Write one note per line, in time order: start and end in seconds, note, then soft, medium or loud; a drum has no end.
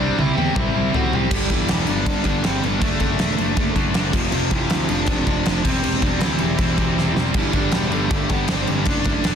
0.00 0.11 C2 medium
0.00 0.36 C3 medium
0.00 0.16 C3 medium
0.00 0.37 G3 loud
0.00 0.17 G3 medium
0.00 0.37 C4 loud
0.00 0.18 C4 loud
0.00 0.18 D4 medium
0.00 0.18 D5 medium
0.17 0.30 C2 loud
0.17 0.36 C3 medium
0.17 0.36 G3 loud
0.17 0.37 C4 medium
0.17 0.37 E4 medium
0.17 0.36 E5 loud
0.17 high tom medium
0.36 0.49 E2 medium
0.36 0.53 C3 medium
0.36 0.54 G3 medium
0.36 0.54 C4 medium
0.36 0.56 G4 medium
0.36 0.55 G5 loud
0.36 high tom medium
0.41 0.91 C3 medium
0.54 0.68 C2 loud
0.54 0.73 C3 loud
0.54 0.73 G3 loud
0.54 0.74 C4 loud
0.54 0.92 E4 medium
0.54 0.94 E5 loud
0.54 kick loud
0.54 mid tom loud
0.74 0.87 C2 loud
0.74 0.91 C3 medium
0.74 0.92 G3 loud
0.74 0.93 C4 loud
0.92 1.06 A2 medium
0.92 1.11 C3 medium
0.92 1.11 G3 loud
0.92 1.12 C4 loud
0.92 1.12 F#4 medium
0.92 1.15 F#5 loud
0.92 floor tom loud
1.12 1.25 C2 loud
1.12 1.30 C3 medium
1.12 1.30 G3 medium
1.12 1.31 C4 medium
1.12 1.32 G5 medium
1.12 floor tom medium
1.16 1.31 G4 medium
1.31 1.46 G1 medium
1.31 1.50 G2 medium
1.31 1.50 D3 medium
1.31 1.50 G3 loud
1.31 1.49 G4 loud
1.31 kick loud
1.31 crash loud
1.31 crash medium
1.49 1.65 G1 medium
1.49 1.68 G2 medium
1.49 1.69 D3 medium
1.49 1.85 E3 medium
1.49 1.70 G3 medium
1.49 1.85 E4 loud
1.49 kick medium
1.49 crash medium
1.68 1.85 E1 medium
1.68 1.87 G2 medium
1.68 1.87 D3 medium
1.68 1.88 G3 loud
1.68 snare loud
1.68 crash medium
1.85 2.05 G2 medium
1.85 2.05 D3 medium
1.85 2.21 D4 loud
1.85 2.23 D5 medium
1.85 crash medium
1.89 2.03 G1 medium
1.89 2.06 G3 medium
2.06 2.22 G1 loud
2.06 2.24 G2 medium
2.06 2.23 D3 loud
2.06 2.25 G3 loud
2.06 kick loud
2.06 crash medium
2.23 2.40 G1 medium
2.23 2.42 G2 medium
2.23 2.43 D3 medium
2.23 2.43 G3 loud
2.23 2.44 D4 medium
2.23 2.44 D5 medium
2.23 kick medium
2.23 crash medium
2.43 2.60 G1 medium
2.43 2.61 G2 medium
2.43 2.62 D3 medium
2.43 2.62 G3 medium
2.43 2.63 C4 medium
2.43 2.63 C5 medium
2.43 snare loud
2.43 crash medium
2.62 2.79 G1 loud
2.62 2.80 G2 medium
2.62 2.80 D3 medium
2.62 2.81 G3 medium
2.62 2.83 B3 medium
2.62 2.82 B4 medium
2.62 crash medium
2.79 2.97 F#1 loud
2.79 2.99 D3 medium
2.79 2.96 A3 loud
2.79 3.01 A3 loud
2.79 3.00 D4 loud
2.79 kick loud
2.79 crash medium
2.83 3.00 A4 medium
2.98 3.16 F#1 medium
2.98 3.17 D3 medium
2.98 3.71 A3 medium
2.98 3.19 A3 medium
2.98 3.18 D4 loud
2.98 3.73 A4 medium
2.98 kick medium
2.98 crash medium
3.19 3.35 E1 loud
3.19 3.36 D3 medium
3.19 3.36 A3 medium
3.19 3.37 D4 medium
3.19 snare loud
3.19 crash medium
3.37 3.54 F#1 medium
3.37 3.55 D3 medium
3.37 3.55 A3 medium
3.37 3.56 D4 medium
3.37 crash medium
3.56 3.72 F#1 loud
3.56 3.74 D3 loud
3.56 3.74 A3 loud
3.56 3.75 D4 loud
3.56 kick loud
3.56 crash medium
3.75 3.91 F#1 medium
3.75 3.93 D3 medium
3.75 3.93 A3 medium
3.75 3.94 D4 medium
3.75 kick medium
3.75 crash medium
3.94 4.10 F#1 loud
3.94 4.12 D3 medium
3.94 4.13 A3 loud
3.94 4.13 D4 medium
3.94 snare loud
3.94 crash medium
4.12 4.29 F1 medium
4.12 4.30 F2 loud
4.12 4.30 C3 loud
4.12 4.31 F3 loud
4.12 kick loud
4.12 crash medium
4.31 4.48 F1 medium
4.31 4.49 F2 medium
4.31 4.49 C3 medium
4.31 4.49 F3 loud
4.31 4.51 F3 medium
4.31 4.52 F4 loud
4.31 crash medium
4.50 4.67 F1 medium
4.50 4.67 F2 medium
4.50 4.68 C3 medium
4.50 4.88 E3 medium
4.50 4.68 F3 loud
4.50 4.88 E4 loud
4.50 kick medium
4.50 crash medium
4.68 4.87 D2 loud
4.68 4.85 F2 medium
4.68 4.86 C3 medium
4.68 4.87 F3 loud
4.68 snare loud
4.68 crash medium
4.87 5.05 F1 medium
4.87 5.05 F2 medium
4.87 5.06 C3 medium
4.87 5.06 F3 medium
4.87 5.24 D4 loud
4.87 5.25 D5 medium
4.87 crash medium
5.06 5.23 F1 medium
5.06 5.25 F2 loud
5.06 5.25 C3 loud
5.06 5.25 F3 loud
5.06 kick loud
5.06 crash medium
5.25 5.42 F1 medium
5.25 5.44 F2 medium
5.25 5.44 C3 medium
5.25 5.44 F3 loud
5.25 5.62 D4 loud
5.25 5.62 D5 medium
5.25 kick loud
5.25 crash medium
5.31 5.66 F2 medium
5.45 5.62 F1 loud
5.45 5.64 F2 medium
5.45 5.64 C3 medium
5.45 5.64 F3 loud
5.45 snare loud
5.45 crash medium
5.63 5.80 E1 loud
5.63 5.83 C3 medium
5.63 5.84 G3 loud
5.63 5.99 C4 loud
5.63 5.83 C4 loud
5.63 5.99 C5 medium
5.63 kick loud
5.63 crash loud
5.84 6.00 E1 medium
5.84 6.00 C3 medium
5.84 6.02 G3 loud
5.84 6.02 C4 loud
5.84 crash medium
6.02 6.18 E1 medium
6.02 6.20 C3 medium
6.02 6.21 G3 medium
6.02 6.21 C4 loud
6.02 6.18 D4 loud
6.02 6.21 D5 medium
6.02 kick medium
6.02 crash medium
6.17 7.11 E3 medium
6.17 7.15 E4 loud
6.17 snare loud
6.17 crash medium
6.22 6.37 D2 medium
6.22 6.38 C3 medium
6.22 6.39 G3 loud
6.22 6.39 C4 medium
6.39 6.56 E1 medium
6.39 6.57 C3 medium
6.39 6.58 G3 medium
6.39 6.58 C4 medium
6.39 crash medium
6.58 6.74 E1 medium
6.58 6.77 C3 medium
6.58 6.77 G3 loud
6.58 6.78 C4 loud
6.58 kick loud
6.58 crash medium
6.78 6.93 E1 loud
6.78 6.96 C3 medium
6.78 6.97 G3 medium
6.78 6.97 C4 loud
6.78 kick medium
6.78 crash medium
6.97 7.13 E1 medium
6.97 7.14 C3 medium
6.97 7.15 G3 medium
6.97 7.15 C4 loud
6.97 snare medium
7.15 7.32 E1 medium
7.15 7.34 C3 medium
7.15 7.34 G3 medium
7.15 7.34 C4 medium
7.15 snare medium
7.34 7.50 G1 medium
7.34 7.51 G2 medium
7.34 7.51 D3 loud
7.34 7.54 E3 medium
7.34 7.52 G3 loud
7.34 kick loud
7.34 crash medium
7.39 8.28 G3 loud
7.39 7.55 E4 loud
7.52 7.69 G1 medium
7.52 7.72 G2 medium
7.52 7.72 D3 medium
7.52 7.73 G3 medium
7.52 7.72 D4 medium
7.52 7.72 D5 medium
7.52 kick medium
7.52 crash medium
7.72 7.89 E1 medium
7.72 7.91 G2 medium
7.72 7.91 D3 medium
7.72 7.92 G3 medium
7.72 7.94 G3 medium
7.72 7.91 G4 medium
7.72 snare loud
7.72 crash medium
7.92 8.07 G1 medium
7.92 8.08 G2 medium
7.92 8.09 D3 medium
7.92 8.09 G3 medium
7.92 8.31 A3 medium
7.92 8.28 A4 medium
7.92 crash medium
8.10 8.26 G1 loud
8.10 8.28 G2 loud
8.10 8.29 D3 loud
8.10 8.29 G3 loud
8.10 kick loud
8.10 crash medium
8.29 8.45 G1 medium
8.29 8.47 G2 medium
8.29 8.47 D3 medium
8.29 8.48 G3 loud
8.29 8.51 B3 medium
8.29 8.49 B4 medium
8.29 kick medium
8.29 crash medium
8.48 8.65 G1 medium
8.48 8.66 G2 medium
8.48 8.67 D3 medium
8.48 8.67 G3 loud
8.48 8.68 C5 medium
8.48 snare loud
8.48 crash medium
8.52 8.70 C4 medium
8.67 8.84 G1 medium
8.67 8.85 G2 medium
8.67 8.84 D3 medium
8.67 8.85 G3 medium
8.67 crash medium
8.72 9.35 D4 medium
8.72 9.35 D5 medium
8.85 9.02 F#1 medium
8.85 9.05 D3 loud
8.85 9.06 A3 loud
8.85 9.06 D4 loud
8.85 kick loud
8.85 crash medium
9.04 9.21 F#1 loud
9.04 9.24 D3 medium
9.04 9.25 A3 medium
9.04 9.25 D4 loud
9.04 kick medium
9.04 crash medium
9.24 9.35 E1 loud
9.24 9.35 D3 medium
9.24 9.35 A3 medium
9.24 9.35 D4 medium
9.24 snare loud
9.24 crash medium